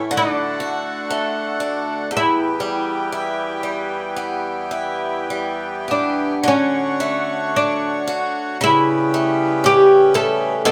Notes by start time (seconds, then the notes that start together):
Already playing: A2 E3 A3 C#4 E4
0.11 D3 A3 F#4
0.17 D4
0.60 F#4
1.11 A3
1.60 D4
2.11 E2 E3 B3 G4
2.17 E4
2.60 G3
3.12 E4
3.63 G3
4.16 B3
4.71 E4
5.30 G3
5.88 B3 D4
6.42 D3 F#4 C#5
6.48 C#4
7.00 A3
7.56 D4
8.07 F#4
8.61 C#3 G3 B3 E4
9.14 A3
9.64 C#4 G4
10.14 A3 A4
10.63 B2 A3 D4 A4